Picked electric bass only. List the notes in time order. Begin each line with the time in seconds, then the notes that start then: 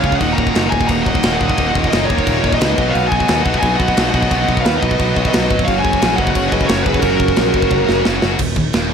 0.04 C#2
0.21 D#1
0.39 D#1
0.55 F#1
0.73 D#1
0.90 D#1
1.07 D#1
1.24 D#1
1.41 D#1
1.58 D#1
1.76 D#1
1.93 F#1
2.10 D#1
2.27 D#1
2.44 D#1
2.61 C#2
2.78 B1
2.95 B1
3.12 B1
3.30 D#2
3.46 B1
3.63 B1
3.80 B1
3.97 B1
4.14 B1
4.32 B1
4.49 B1
4.65 D#2
4.83 B1
5.00 B1
5.17 B1
5.36 B1
5.51 G#1
5.68 F#1
5.85 F#1
6.02 A#1
6.19 F#1
6.35 F#1
6.52 F#1
6.70 F#1
6.87 F#1
7.03 F#1
7.20 F#1
7.39 A#1
7.54 F#1
7.71 F#1
7.89 F#1
8.07 F#1
8.23 F#1
8.40 D#1
8.56 D#1
8.75 D#1